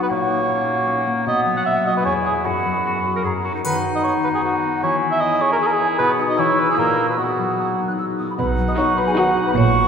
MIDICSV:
0, 0, Header, 1, 13, 480
1, 0, Start_track
1, 0, Key_signature, 5, "major"
1, 0, Tempo, 393959
1, 118, Time_signature, 3, 2, 24, 8
1, 12037, End_track
2, 0, Start_track
2, 0, Title_t, "Flute"
2, 0, Program_c, 0, 73
2, 0, Note_on_c, 0, 78, 41
2, 1485, Note_off_c, 0, 78, 0
2, 1554, Note_on_c, 0, 78, 47
2, 2486, Note_on_c, 0, 80, 44
2, 2505, Note_off_c, 0, 78, 0
2, 2988, Note_on_c, 0, 83, 38
2, 3006, Note_off_c, 0, 80, 0
2, 3975, Note_on_c, 0, 82, 36
2, 3993, Note_off_c, 0, 83, 0
2, 4210, Note_off_c, 0, 82, 0
2, 4462, Note_on_c, 0, 78, 38
2, 5889, Note_on_c, 0, 80, 49
2, 5907, Note_off_c, 0, 78, 0
2, 7312, Note_on_c, 0, 87, 52
2, 7330, Note_off_c, 0, 80, 0
2, 7763, Note_on_c, 0, 88, 53
2, 7781, Note_off_c, 0, 87, 0
2, 8759, Note_on_c, 0, 87, 39
2, 8777, Note_off_c, 0, 88, 0
2, 9197, Note_off_c, 0, 87, 0
2, 9250, Note_on_c, 0, 87, 40
2, 9332, Note_off_c, 0, 87, 0
2, 9602, Note_on_c, 0, 90, 41
2, 9659, Note_off_c, 0, 90, 0
2, 9735, Note_on_c, 0, 88, 44
2, 9808, Note_off_c, 0, 88, 0
2, 9984, Note_on_c, 0, 87, 40
2, 10037, Note_off_c, 0, 87, 0
2, 10117, Note_on_c, 0, 83, 29
2, 10168, Note_off_c, 0, 83, 0
2, 10225, Note_on_c, 0, 83, 60
2, 10305, Note_off_c, 0, 83, 0
2, 10581, Note_on_c, 0, 87, 57
2, 10635, Note_off_c, 0, 87, 0
2, 10692, Note_on_c, 0, 85, 62
2, 10940, Note_on_c, 0, 83, 64
2, 10958, Note_off_c, 0, 85, 0
2, 11044, Note_off_c, 0, 83, 0
2, 11051, Note_on_c, 0, 80, 55
2, 11105, Note_off_c, 0, 80, 0
2, 11178, Note_on_c, 0, 78, 57
2, 11524, Note_off_c, 0, 78, 0
2, 11540, Note_on_c, 0, 83, 62
2, 11591, Note_off_c, 0, 83, 0
2, 11651, Note_on_c, 0, 85, 83
2, 12037, Note_off_c, 0, 85, 0
2, 12037, End_track
3, 0, Start_track
3, 0, Title_t, "Cor anglais"
3, 0, Program_c, 1, 69
3, 33, Note_on_c, 1, 71, 59
3, 79, Note_off_c, 1, 71, 0
3, 140, Note_on_c, 1, 73, 71
3, 1286, Note_off_c, 1, 73, 0
3, 1557, Note_on_c, 1, 75, 77
3, 1712, Note_off_c, 1, 75, 0
3, 1910, Note_on_c, 1, 78, 68
3, 1960, Note_off_c, 1, 78, 0
3, 2024, Note_on_c, 1, 76, 68
3, 2254, Note_off_c, 1, 76, 0
3, 2276, Note_on_c, 1, 75, 63
3, 2382, Note_off_c, 1, 75, 0
3, 2400, Note_on_c, 1, 71, 57
3, 2492, Note_off_c, 1, 71, 0
3, 2499, Note_on_c, 1, 73, 70
3, 2607, Note_off_c, 1, 73, 0
3, 2743, Note_on_c, 1, 68, 54
3, 2852, Note_off_c, 1, 68, 0
3, 2969, Note_on_c, 1, 66, 53
3, 3933, Note_off_c, 1, 66, 0
3, 4449, Note_on_c, 1, 71, 54
3, 4610, Note_off_c, 1, 71, 0
3, 4817, Note_on_c, 1, 75, 55
3, 4869, Note_off_c, 1, 75, 0
3, 4919, Note_on_c, 1, 73, 58
3, 5029, Note_off_c, 1, 73, 0
3, 5165, Note_on_c, 1, 71, 53
3, 5219, Note_off_c, 1, 71, 0
3, 5295, Note_on_c, 1, 68, 52
3, 5347, Note_off_c, 1, 68, 0
3, 5404, Note_on_c, 1, 66, 50
3, 5871, Note_off_c, 1, 66, 0
3, 5890, Note_on_c, 1, 73, 66
3, 6049, Note_off_c, 1, 73, 0
3, 6234, Note_on_c, 1, 76, 74
3, 6347, Note_on_c, 1, 75, 73
3, 6365, Note_off_c, 1, 76, 0
3, 6596, Note_on_c, 1, 73, 73
3, 6614, Note_off_c, 1, 75, 0
3, 6713, Note_off_c, 1, 73, 0
3, 6732, Note_on_c, 1, 70, 68
3, 6781, Note_off_c, 1, 70, 0
3, 6854, Note_on_c, 1, 68, 67
3, 6902, Note_on_c, 1, 70, 57
3, 6921, Note_off_c, 1, 68, 0
3, 6984, Note_on_c, 1, 68, 63
3, 7002, Note_off_c, 1, 70, 0
3, 7284, Note_off_c, 1, 68, 0
3, 7291, Note_on_c, 1, 71, 79
3, 7452, Note_off_c, 1, 71, 0
3, 7659, Note_on_c, 1, 75, 73
3, 7797, Note_on_c, 1, 73, 71
3, 7816, Note_off_c, 1, 75, 0
3, 8039, Note_on_c, 1, 71, 67
3, 8057, Note_off_c, 1, 73, 0
3, 8145, Note_off_c, 1, 71, 0
3, 8169, Note_on_c, 1, 68, 61
3, 8263, Note_off_c, 1, 68, 0
3, 8270, Note_on_c, 1, 70, 72
3, 8622, Note_off_c, 1, 70, 0
3, 8645, Note_on_c, 1, 71, 46
3, 8751, Note_on_c, 1, 66, 56
3, 8769, Note_off_c, 1, 71, 0
3, 9736, Note_off_c, 1, 66, 0
3, 10217, Note_on_c, 1, 78, 52
3, 12037, Note_off_c, 1, 78, 0
3, 12037, End_track
4, 0, Start_track
4, 0, Title_t, "Marimba"
4, 0, Program_c, 2, 12
4, 10223, Note_on_c, 2, 71, 54
4, 10556, Note_off_c, 2, 71, 0
4, 10576, Note_on_c, 2, 75, 56
4, 10689, Note_off_c, 2, 75, 0
4, 10694, Note_on_c, 2, 73, 57
4, 10917, Note_off_c, 2, 73, 0
4, 10943, Note_on_c, 2, 71, 56
4, 11050, Note_off_c, 2, 71, 0
4, 11062, Note_on_c, 2, 68, 47
4, 11168, Note_off_c, 2, 68, 0
4, 11173, Note_on_c, 2, 66, 44
4, 11504, Note_off_c, 2, 66, 0
4, 11529, Note_on_c, 2, 71, 53
4, 11639, Note_off_c, 2, 71, 0
4, 11666, Note_on_c, 2, 73, 67
4, 12037, Note_off_c, 2, 73, 0
4, 12037, End_track
5, 0, Start_track
5, 0, Title_t, "Violin section"
5, 0, Program_c, 3, 48
5, 10697, Note_on_c, 3, 66, 50
5, 11051, Note_off_c, 3, 66, 0
5, 11179, Note_on_c, 3, 66, 51
5, 11529, Note_off_c, 3, 66, 0
5, 12037, End_track
6, 0, Start_track
6, 0, Title_t, "Violin section"
6, 0, Program_c, 4, 48
6, 10690, Note_on_c, 4, 66, 49
6, 11047, Note_off_c, 4, 66, 0
6, 11181, Note_on_c, 4, 66, 52
6, 11530, Note_off_c, 4, 66, 0
6, 12037, End_track
7, 0, Start_track
7, 0, Title_t, "Clarinet"
7, 0, Program_c, 5, 71
7, 0, Note_on_c, 5, 59, 53
7, 118, Note_on_c, 5, 58, 57
7, 136, Note_off_c, 5, 59, 0
7, 1535, Note_off_c, 5, 58, 0
7, 1544, Note_on_c, 5, 59, 67
7, 2493, Note_on_c, 5, 64, 51
7, 2511, Note_off_c, 5, 59, 0
7, 3000, Note_on_c, 5, 66, 46
7, 3019, Note_off_c, 5, 64, 0
7, 3433, Note_off_c, 5, 66, 0
7, 3478, Note_on_c, 5, 66, 50
7, 3642, Note_off_c, 5, 66, 0
7, 3849, Note_on_c, 5, 70, 42
7, 3901, Note_off_c, 5, 70, 0
7, 3947, Note_on_c, 5, 68, 41
7, 4059, Note_off_c, 5, 68, 0
7, 4192, Note_on_c, 5, 66, 44
7, 4309, Note_off_c, 5, 66, 0
7, 4316, Note_on_c, 5, 63, 40
7, 4372, Note_off_c, 5, 63, 0
7, 4430, Note_on_c, 5, 63, 54
7, 5885, Note_on_c, 5, 64, 62
7, 5904, Note_off_c, 5, 63, 0
7, 7312, Note_on_c, 5, 59, 67
7, 7331, Note_off_c, 5, 64, 0
7, 7770, Note_off_c, 5, 59, 0
7, 7777, Note_on_c, 5, 64, 64
7, 8237, Note_on_c, 5, 58, 52
7, 8255, Note_off_c, 5, 64, 0
7, 8729, Note_off_c, 5, 58, 0
7, 8736, Note_on_c, 5, 59, 42
7, 9949, Note_off_c, 5, 59, 0
7, 10216, Note_on_c, 5, 63, 53
7, 11647, Note_on_c, 5, 66, 56
7, 11665, Note_off_c, 5, 63, 0
7, 12037, Note_off_c, 5, 66, 0
7, 12037, End_track
8, 0, Start_track
8, 0, Title_t, "Viola section"
8, 0, Program_c, 6, 48
8, 10681, Note_on_c, 6, 63, 50
8, 11042, Note_off_c, 6, 63, 0
8, 11174, Note_on_c, 6, 63, 55
8, 11526, Note_off_c, 6, 63, 0
8, 12037, End_track
9, 0, Start_track
9, 0, Title_t, "Harp"
9, 0, Program_c, 7, 46
9, 0, Note_on_c, 7, 47, 43
9, 0, Note_on_c, 7, 54, 33
9, 0, Note_on_c, 7, 63, 38
9, 0, Note_on_c, 7, 66, 33
9, 0, Note_on_c, 7, 71, 39
9, 121, Note_on_c, 7, 46, 45
9, 138, Note_off_c, 7, 63, 0
9, 139, Note_off_c, 7, 71, 0
9, 140, Note_off_c, 7, 47, 0
9, 365, Note_on_c, 7, 58, 40
9, 587, Note_on_c, 7, 61, 43
9, 809, Note_off_c, 7, 66, 0
9, 824, Note_on_c, 7, 66, 43
9, 1048, Note_off_c, 7, 61, 0
9, 1063, Note_on_c, 7, 61, 50
9, 1286, Note_off_c, 7, 58, 0
9, 1301, Note_on_c, 7, 58, 44
9, 1535, Note_on_c, 7, 47, 50
9, 1554, Note_off_c, 7, 61, 0
9, 1555, Note_off_c, 7, 46, 0
9, 1555, Note_off_c, 7, 58, 0
9, 1759, Note_off_c, 7, 54, 0
9, 1774, Note_on_c, 7, 54, 41
9, 2010, Note_on_c, 7, 59, 39
9, 2242, Note_off_c, 7, 66, 0
9, 2256, Note_on_c, 7, 66, 39
9, 2499, Note_on_c, 7, 40, 50
9, 2512, Note_off_c, 7, 59, 0
9, 2513, Note_off_c, 7, 47, 0
9, 2514, Note_off_c, 7, 54, 0
9, 2515, Note_off_c, 7, 66, 0
9, 2736, Note_on_c, 7, 68, 34
9, 2747, Note_on_c, 7, 73, 36
9, 2984, Note_on_c, 7, 42, 40
9, 3000, Note_off_c, 7, 68, 0
9, 3003, Note_off_c, 7, 40, 0
9, 3006, Note_off_c, 7, 73, 0
9, 3231, Note_on_c, 7, 54, 33
9, 3470, Note_on_c, 7, 59, 30
9, 3718, Note_on_c, 7, 66, 31
9, 3937, Note_off_c, 7, 42, 0
9, 3951, Note_on_c, 7, 42, 39
9, 3977, Note_off_c, 7, 59, 0
9, 4184, Note_off_c, 7, 66, 0
9, 4196, Note_on_c, 7, 66, 30
9, 4205, Note_on_c, 7, 73, 33
9, 4446, Note_on_c, 7, 51, 42
9, 4460, Note_off_c, 7, 42, 0
9, 4464, Note_off_c, 7, 73, 0
9, 4688, Note_on_c, 7, 63, 31
9, 4925, Note_on_c, 7, 59, 35
9, 5150, Note_off_c, 7, 66, 0
9, 5164, Note_on_c, 7, 66, 34
9, 5408, Note_on_c, 7, 71, 38
9, 5626, Note_off_c, 7, 59, 0
9, 5640, Note_on_c, 7, 59, 40
9, 5877, Note_on_c, 7, 52, 45
9, 5900, Note_off_c, 7, 66, 0
9, 5901, Note_off_c, 7, 51, 0
9, 5901, Note_off_c, 7, 63, 0
9, 5902, Note_off_c, 7, 54, 0
9, 6100, Note_off_c, 7, 59, 0
9, 6114, Note_on_c, 7, 59, 39
9, 6355, Note_on_c, 7, 64, 45
9, 6586, Note_on_c, 7, 68, 42
9, 6808, Note_off_c, 7, 71, 0
9, 6823, Note_on_c, 7, 71, 50
9, 7055, Note_off_c, 7, 64, 0
9, 7070, Note_on_c, 7, 64, 47
9, 7295, Note_on_c, 7, 47, 51
9, 7316, Note_off_c, 7, 68, 0
9, 7318, Note_off_c, 7, 52, 0
9, 7322, Note_off_c, 7, 64, 0
9, 7538, Note_on_c, 7, 63, 42
9, 7545, Note_on_c, 7, 66, 49
9, 7772, Note_on_c, 7, 52, 56
9, 7789, Note_off_c, 7, 47, 0
9, 7793, Note_off_c, 7, 63, 0
9, 7796, Note_off_c, 7, 66, 0
9, 8005, Note_on_c, 7, 64, 38
9, 8013, Note_on_c, 7, 68, 43
9, 8254, Note_on_c, 7, 46, 53
9, 8268, Note_off_c, 7, 71, 0
9, 8269, Note_off_c, 7, 59, 0
9, 8271, Note_off_c, 7, 52, 0
9, 8271, Note_off_c, 7, 68, 0
9, 8482, Note_off_c, 7, 64, 0
9, 8497, Note_on_c, 7, 64, 32
9, 8505, Note_on_c, 7, 66, 36
9, 8743, Note_on_c, 7, 47, 36
9, 8764, Note_off_c, 7, 64, 0
9, 8765, Note_off_c, 7, 46, 0
9, 8993, Note_on_c, 7, 54, 29
9, 9233, Note_on_c, 7, 59, 27
9, 9484, Note_on_c, 7, 63, 28
9, 9711, Note_off_c, 7, 66, 0
9, 9725, Note_on_c, 7, 66, 32
9, 9956, Note_off_c, 7, 59, 0
9, 9970, Note_on_c, 7, 59, 28
9, 10198, Note_off_c, 7, 47, 0
9, 10212, Note_on_c, 7, 47, 44
9, 10446, Note_off_c, 7, 54, 0
9, 10460, Note_on_c, 7, 54, 37
9, 10686, Note_off_c, 7, 59, 0
9, 10700, Note_on_c, 7, 59, 37
9, 10927, Note_off_c, 7, 63, 0
9, 10942, Note_on_c, 7, 63, 36
9, 11160, Note_off_c, 7, 66, 0
9, 11175, Note_on_c, 7, 66, 43
9, 11391, Note_off_c, 7, 59, 0
9, 11406, Note_on_c, 7, 59, 39
9, 11645, Note_on_c, 7, 46, 48
9, 11662, Note_off_c, 7, 47, 0
9, 11664, Note_off_c, 7, 59, 0
9, 11669, Note_off_c, 7, 63, 0
9, 11878, Note_on_c, 7, 58, 46
9, 12037, Note_off_c, 7, 46, 0
9, 12037, Note_off_c, 7, 54, 0
9, 12037, Note_off_c, 7, 58, 0
9, 12037, Note_off_c, 7, 66, 0
9, 12037, End_track
10, 0, Start_track
10, 0, Title_t, "French horn section"
10, 0, Program_c, 8, 60
10, 10687, Note_on_c, 8, 66, 41
10, 10691, Note_on_c, 8, 51, 40
10, 10860, Note_off_c, 8, 66, 0
10, 10864, Note_off_c, 8, 51, 0
10, 11161, Note_on_c, 8, 51, 44
10, 11162, Note_on_c, 8, 66, 43
10, 11334, Note_off_c, 8, 51, 0
10, 11335, Note_off_c, 8, 66, 0
10, 12037, End_track
11, 0, Start_track
11, 0, Title_t, "Cello section"
11, 0, Program_c, 10, 48
11, 10219, Note_on_c, 10, 47, 53
11, 10598, Note_off_c, 10, 47, 0
11, 11646, Note_on_c, 10, 46, 68
11, 12019, Note_off_c, 10, 46, 0
11, 12037, End_track
12, 0, Start_track
12, 0, Title_t, "Double bass section"
12, 0, Program_c, 11, 48
12, 10222, Note_on_c, 11, 35, 60
12, 10599, Note_off_c, 11, 35, 0
12, 11647, Note_on_c, 11, 34, 71
12, 12020, Note_off_c, 11, 34, 0
12, 12037, End_track
13, 0, Start_track
13, 0, Title_t, "Drums"
13, 4443, Note_on_c, 9, 81, 33
13, 4565, Note_off_c, 9, 81, 0
13, 12037, End_track
0, 0, End_of_file